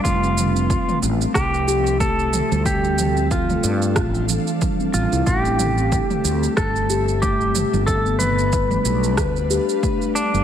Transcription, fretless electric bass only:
X:1
M:4/4
L:1/16
Q:"Swing 16ths" 1/4=92
K:Am
V:1 name="Fretless electric bass" clef=bass
F,,,4 z2 A,,, z C,,6 z D,,- | D,,4- D,, z G,,2 A,,,2 z4 A,,, C,, | A,,,4 z2 D,, z G,,,6 z G,,,- | G,,,4- G,,, z B,,,2 D,,2 z4 z G,,, |]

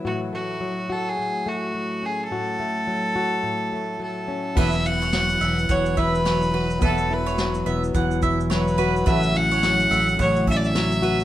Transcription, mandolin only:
X:1
M:4/4
L:1/16
Q:"Swing 16ths" 1/4=107
K:A
V:1 name="Mandolin"
z16 | z16 | B z2 c2 z e z f2 e z c z B z | B z2 c2 z e z f2 e z c z B z |
B z2 c2 z e z f2 e z c z B z |]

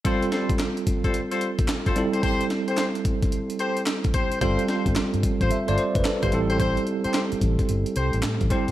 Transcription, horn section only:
X:1
M:4/4
L:1/16
Q:"Swing 16ths" 1/4=110
K:Gmix
V:1 name="Horn section"
[G,FAc] z [G,FAc] z4 [G,FAc] z [G,FAc] z3 [G,FAc] z [GAc] | [GAc] z2 [GAc] z6 [GAc] z3 [GAc] z | [FAc] z [FAc] z4 [FAc] z [FAc] z3 [FAc] z [GAc] | [GAc] z2 [GAc] z6 [GAc] z3 [GAc] z |]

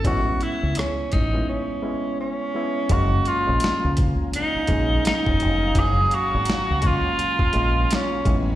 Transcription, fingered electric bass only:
X:1
M:4/4
L:1/16
Q:"Swing 16ths" 1/4=84
K:F#
V:1 name="Fingered electric bass" clef=bass
=A,,,2 z C,, z2 A,,,2 z8 | F,,,2 z A,,, z C,,2 z3 A,,,2 z E,,, E,,,2 | F,,,2 z G,,, z C,,2 z3 A,,,2 z2 =A,,,2 |]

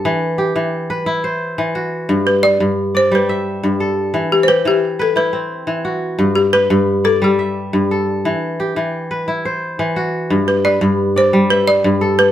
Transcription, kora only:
X:1
M:12/8
L:1/8
Q:3/8=117
K:G
V:1 name="Kora"
A z G3 B2 c3 F2- | F z4 d2 e3 A2- | A z G3 B2 C3 F2- | F z B3 d2 e3 A2- |
A z G3 B2 c3 F2- | F z B3 d2 e3 A2 |]
V:2 name="Kora" clef=bass
E,2 z E,2 z E2 z E,2 z | G,,2 z G,,2 z G,2 z G,,2 z | E,2 z E,2 z E2 z E,2 z | G,,2 z G,,2 z G,2 z G,,2 z |
E,2 z E,2 z E2 z E,2 z | G,,2 z G,,2 z G,2 z G,,2 z |]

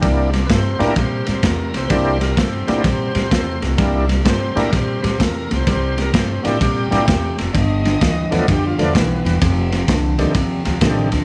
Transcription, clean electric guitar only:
X:1
M:4/4
L:1/8
Q:"Swing" 1/4=128
K:Cmix
V:1 name="Clean electric guitar" clef=bass
[C,G,] [C,G,] [C,A,] [C,A,] [C,G,] [C,G,] [C,A,] [C,A,] | [C,G,] [C,G,] [C,A,] [C,A,] [C,G,] [C,G,] [C,A,] [C,A,] | [C,G,] [C,G,] [C,A,] [C,A,] [C,G,] [C,G,] [C,A,] [C,A,] | [C,G,] [C,G,] [C,A,] [C,A,] [C,G,] [C,G,] [C,A,] [C,A,] |
[G,,D,] [G,,D,] [G,,E,] [G,,E,] [G,,D,] [G,,D,] [G,,E,] [G,,E,] | [F,,C,] [F,,C,] [F,,D,] [F,,D,] [F,,C,] [F,,C,] [F,,D,] [F,,D,] |]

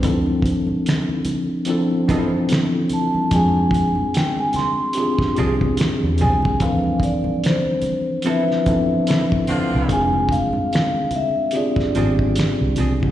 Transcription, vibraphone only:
X:1
M:4/4
L:1/16
Q:"Swing 16ths" 1/4=73
K:Ddor
V:1 name="Vibraphone"
z12 z2 a2 | _a4 g a c'4 z4 a2 | f2 d2 c4 e6 z2 | _a2 f4 e2 d6 z2 |]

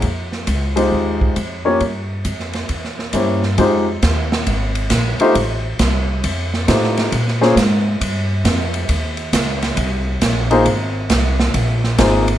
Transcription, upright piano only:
X:1
M:4/4
L:1/8
Q:"Swing" 1/4=136
K:Fm
V:1 name="Upright piano"
z3 [A,EFGc]3 z [B,DFGd] | z6 [B,D=EGc] z | [A,EFGc] z6 [=A,EFGc] | z6 [=A,EFGc]2 |
z [B,DFAc] z6 | z6 z [B,EFAc] | z6 [B,EFAc] z |]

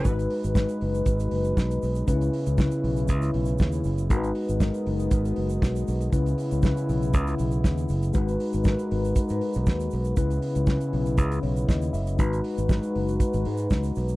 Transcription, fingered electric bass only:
X:1
M:4/4
L:1/16
Q:1/4=119
K:G#m
V:1 name="Fingered electric bass" clef=bass
G,,,2 z G,,,2 z F,,,2 G,,,2 F,,,2 B,,,2 B,,,2 | C,,2 z C,,2 z B,,,2 C,,2 B,,,2 D,,2 F,,,2 | G,,,2 z G,,,2 z F,,,2 G,,,2 F,,,2 B,,,2 B,,,2 | C,,2 z C,,2 z B,,,2 C,,2 B,,,2 D,,2 F,,,2 |
G,,,2 z G,,,2 z G,,,2 z G,, z B,,, D,,2 B,,,2 | C,,2 z C,,2 z B,,,2 C,,2 B,,,2 D,,2 F,,,2 | G,,,2 z G,,,2 z F,,,2 z G,,, G,,2 C,,2 B,,,2 |]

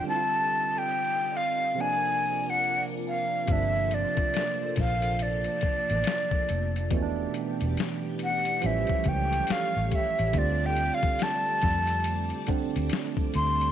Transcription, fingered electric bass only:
X:1
M:4/4
L:1/16
Q:"Swing 16ths" 1/4=70
K:Gdor
V:1 name="Fingered electric bass" clef=bass
z16 | G,,,3 z3 B,,,4 z A,,, z2 F,,,2 | E,,,2 z E,,, z4 A,,, z ^C,,2 z A,,, z A,,, | D,,3 z3 F,,4 z D,, z2 D,,2 |]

